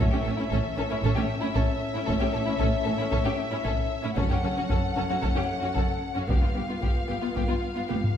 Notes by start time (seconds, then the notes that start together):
0.00 A3 C#4 E5, taiko
0.12 A2 C#4 G4
0.24 A1 A2 C#4 A4
0.38 A2 C#4 E4
0.51 A1 A2 C#4 A4, taiko
0.77 A1 A2 C#4 A4
0.90 A2 C#4 E4
1.03 A1 A2 C#4 A4, taiko
1.15 A2 C#4 G4
1.41 A2 C#4 E4
1.54 A1 A2 C#4 A4, taiko
1.94 A2 C#4 E4
2.06 A1 A2 C#4 A4, taiko
2.20 A2 C#4 G4
2.32 A1 A2 C#4 A4
2.45 A2 C#4 E4
2.58 A1 A2 C#4 A4, taiko
2.84 A1 A2 C#4 A4
2.98 A2 C#4 E4
3.11 A1 A2 C#4 A4, taiko
3.24 A2 C#4 G4
3.51 A2 C#4 E4
3.64 A1 A2 C#4 A4, taiko
4.03 A2 C#4 E4
4.16 F#1 F#2 A3 C#4 A4 F#5, taiko
4.30 F#2 C#4 G4
4.44 F#1 F#2 C#4 A4
4.57 F#2 C#4 F#4
4.69 F#1 F#2 C#4 A4, taiko
4.96 F#1 F#2 C#4 A4
5.09 F#2 C#4 F#4
5.21 F#1 F#2 C#4 A4, taiko
5.34 F#2 C#4 G4
5.62 F#2 C#4 F#4
5.74 F#1 F#2 C#4 A4, taiko
6.14 F#2 C#4 F#4
6.27 G1 G2 B3 F4 G4 F5, taiko
6.41 G2 B3 F4
6.54 G1 G2 B3 G4
6.68 G2 B3 F4
6.81 G1 G2 B3 G4, taiko
7.08 G1 G2 B3 G4
7.21 G2 B3 F4
7.35 G1 G2 B3 G4, taiko
7.48 G2 B3 F4
7.75 G2 B3 F4
7.88 G1 G2 B3 G4, taiko high
8.04 taiko low-mid